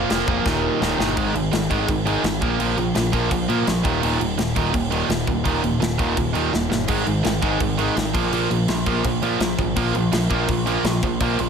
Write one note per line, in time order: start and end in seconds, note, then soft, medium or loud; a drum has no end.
0.10 0.22 F1 loud
0.10 0.26 A#2 medium
0.10 0.27 F3 medium
0.10 0.27 A#3 medium
0.10 snare loud
0.10 crash medium
0.27 0.39 F1 loud
0.27 0.44 A#2 loud
0.27 0.45 F3 medium
0.27 0.45 A#3 medium
0.27 kick loud
0.45 0.68 D#1 loud
0.45 0.79 D#2 loud
0.45 0.80 A#2 loud
0.45 0.80 D#3 loud
0.45 kick loud
0.45 snare medium
0.80 0.93 D#1 loud
0.80 0.97 D#2 medium
0.80 0.98 A#2 medium
0.80 0.98 D#3 medium
0.80 snare medium
0.99 1.17 G1 medium
0.99 1.16 D#2 loud
0.99 1.16 A#2 medium
0.99 1.16 D#3 medium
0.99 snare medium
1.17 1.31 G#1 medium
1.17 1.33 G#2 medium
1.17 1.34 D#3 medium
1.17 1.34 G#3 loud
1.17 kick loud
1.17 crash medium
1.34 1.48 G#1 medium
1.34 1.51 G#2 medium
1.34 1.51 D#3 medium
1.34 crash medium
1.52 1.66 G#1 medium
1.52 1.69 G#2 medium
1.52 1.69 D#3 medium
1.52 snare loud
1.52 crash medium
1.70 1.85 G#1 medium
1.70 1.87 G#2 medium
1.70 1.87 D#3 loud
1.70 1.88 G#3 loud
1.70 kick medium
1.70 crash medium
1.88 2.16 G#1 medium
1.88 2.04 G#2 medium
1.88 2.05 D#3 medium
1.88 kick loud
1.88 crash medium
2.05 2.23 G#2 loud
2.05 2.23 D#3 medium
2.05 2.23 G#3 loud
2.05 crash medium
2.24 2.42 G#1 medium
2.24 2.40 G#2 medium
2.24 2.40 D#3 medium
2.24 snare loud
2.24 crash medium
2.42 2.56 A#1 medium
2.42 2.57 A#2 medium
2.42 2.58 F3 medium
2.42 2.59 A#3 loud
2.42 kick loud
2.42 crash medium
2.59 2.74 A#1 medium
2.59 2.75 A#2 medium
2.59 2.76 F3 loud
2.59 2.77 A#3 medium
2.59 crash medium
2.77 2.91 A#1 medium
2.77 2.93 A#2 medium
2.77 2.93 F3 medium
2.77 crash medium
2.95 3.10 A#1 medium
2.95 3.11 A#2 medium
2.95 3.11 F3 medium
2.95 snare loud
2.95 crash medium
3.12 3.27 A#1 medium
3.12 3.30 A#2 medium
3.12 3.30 F3 loud
3.12 3.30 A#3 loud
3.12 kick medium
3.12 crash medium
3.31 3.45 A#1 medium
3.31 3.47 A#2 medium
3.31 3.47 F3 medium
3.31 kick loud
3.31 crash medium
3.48 3.65 A#2 loud
3.48 3.63 A#2 medium
3.48 3.65 F3 loud
3.48 3.66 A#3 loud
3.48 crash medium
3.66 3.81 A#1 loud
3.66 3.83 A#2 medium
3.66 3.83 F3 medium
3.66 snare loud
3.66 crash medium
3.84 3.99 D#1 medium
3.84 4.01 D#2 medium
3.84 4.02 A#2 medium
3.84 4.02 D#3 loud
3.84 kick loud
3.84 crash medium
4.02 4.17 D#1 medium
4.02 4.19 D#2 loud
4.02 4.19 A#2 medium
4.02 4.20 D#3 loud
4.02 crash loud
4.20 4.34 D#1 loud
4.20 4.36 D#2 medium
4.20 4.37 A#2 medium
4.20 crash medium
4.37 4.52 D#1 medium
4.37 4.54 D#2 medium
4.37 4.54 A#2 medium
4.37 snare loud
4.37 crash medium
4.55 4.70 D#1 medium
4.55 4.72 D#2 loud
4.55 4.73 A#2 loud
4.55 4.73 D#3 loud
4.55 kick medium
4.55 crash medium
4.73 5.02 D#1 medium
4.73 4.90 D#2 medium
4.73 4.90 A#2 medium
4.73 kick loud
4.73 crash medium
4.91 5.08 D#2 medium
4.91 5.08 A#2 loud
4.91 5.09 D#3 loud
4.91 crash medium
5.09 5.23 D#1 medium
5.09 5.26 D#2 medium
5.09 5.26 A#2 medium
5.09 snare loud
5.09 crash medium
5.27 5.42 D#1 loud
5.27 5.43 D#2 medium
5.27 5.44 A#2 medium
5.27 kick medium
5.27 crash medium
5.45 5.60 D#1 medium
5.45 5.62 D#2 medium
5.45 5.62 A#2 medium
5.45 5.62 D#3 medium
5.45 kick loud
5.45 crash medium
5.63 5.78 D#1 medium
5.63 5.79 D#2 medium
5.63 5.79 A#2 medium
5.63 crash medium
5.81 5.96 D#1 medium
5.81 5.97 D#2 medium
5.81 5.97 A#2 medium
5.81 snare loud
5.81 crash medium
5.99 6.13 D#1 medium
5.99 6.15 D#2 medium
5.99 6.16 A#2 medium
5.99 6.16 D#3 loud
5.99 kick loud
5.99 crash medium
6.17 6.31 D#1 medium
6.17 6.33 D#2 medium
6.17 6.33 A#2 medium
6.17 kick loud
6.17 crash medium
6.35 6.52 D#2 loud
6.35 6.49 D#2 medium
6.35 6.51 A#2 loud
6.35 6.52 D#3 loud
6.35 crash medium
6.53 6.67 D#1 loud
6.53 6.69 D#2 medium
6.53 6.69 A#2 medium
6.53 snare medium
6.71 6.85 G1 medium
6.71 6.87 D#2 medium
6.71 6.87 A#2 medium
6.71 snare medium
6.88 7.03 G#1 medium
6.88 7.05 G#2 medium
6.88 7.06 D#3 medium
6.88 7.06 G#3 medium
6.88 kick loud
6.88 crash loud
7.06 7.21 G#1 medium
7.06 7.23 G#2 medium
7.06 7.23 D#3 medium
7.06 crash medium
7.24 7.39 G#1 loud
7.24 7.41 G#2 medium
7.24 7.41 D#3 medium
7.24 snare loud
7.24 crash medium
7.42 7.57 G#1 medium
7.42 7.59 G#2 medium
7.42 7.59 D#3 loud
7.42 7.60 G#3 loud
7.42 kick medium
7.42 crash medium
7.60 7.89 G#1 medium
7.60 7.77 G#2 medium
7.60 7.77 D#3 medium
7.60 kick loud
7.60 crash medium
7.79 7.95 G#2 medium
7.79 7.96 D#3 loud
7.79 7.96 G#3 loud
7.79 crash medium
7.96 8.11 G#1 loud
7.96 8.13 G#2 medium
7.96 8.13 D#3 medium
7.96 snare loud
7.96 crash medium
8.14 8.29 A#1 medium
8.14 8.31 A#2 medium
8.14 8.32 F3 loud
8.14 8.32 A#3 loud
8.14 kick loud
8.14 crash medium
8.32 8.46 A#1 loud
8.32 8.49 A#2 medium
8.32 8.49 F3 loud
8.32 8.50 A#3 loud
8.32 crash medium
8.50 8.64 A#1 medium
8.50 8.66 A#2 medium
8.50 8.67 F3 medium
8.50 crash medium
8.68 8.82 A#1 medium
8.68 8.85 A#2 medium
8.68 8.85 F3 medium
8.68 snare loud
8.68 crash medium
8.86 9.01 A#1 medium
8.86 9.03 A#2 medium
8.86 9.04 F3 loud
8.86 9.04 A#3 loud
8.86 kick medium
8.86 crash medium
9.05 9.19 A#1 medium
9.05 9.21 A#2 medium
9.05 9.21 F3 medium
9.05 kick loud
9.05 crash medium
9.22 9.36 A#2 medium
9.22 9.40 A#2 loud
9.22 9.40 F3 loud
9.22 9.40 A#3 loud
9.22 crash medium
9.40 9.54 A#1 loud
9.40 9.57 A#2 medium
9.40 9.57 F3 medium
9.40 snare loud
9.40 crash medium
9.58 9.73 G#1 medium
9.58 9.75 A#2 medium
9.58 9.75 F3 medium
9.58 kick medium
9.58 crash medium
9.76 9.91 A#1 medium
9.76 9.93 A#2 loud
9.76 9.94 F3 medium
9.76 9.94 A#3 loud
9.76 kick loud
9.76 crash medium
9.94 10.09 A#1 loud
9.94 10.11 A#2 medium
9.94 10.11 F3 medium
9.94 crash medium
10.12 10.27 A#1 loud
10.12 10.29 A#2 medium
10.12 10.29 F3 loud
10.12 snare loud
10.12 crash medium
10.30 10.45 A#1 medium
10.30 10.47 A#2 loud
10.30 10.47 F3 loud
10.30 10.48 A#3 loud
10.30 kick loud
10.30 crash medium
10.48 10.77 A#1 medium
10.48 10.65 A#2 medium
10.48 10.65 F3 medium
10.48 kick loud
10.48 crash medium
10.66 10.83 A#2 loud
10.66 10.84 F3 loud
10.66 10.84 A#3 loud
10.66 crash medium
10.84 10.98 A#1 loud
10.84 11.01 A#2 medium
10.84 11.01 F3 medium
10.84 snare loud
10.84 crash medium
11.03 11.17 A#1 loud
11.03 11.19 A#2 medium
11.03 11.19 F3 medium
11.03 kick medium
11.03 crash medium
11.20 11.35 A#1 medium
11.20 11.37 A#2 medium
11.20 11.38 F3 medium
11.20 11.38 A#3 loud
11.20 kick loud
11.20 crash medium
11.39 11.49 A#1 medium
11.39 11.49 A#2 medium
11.39 11.49 F3 medium
11.39 crash medium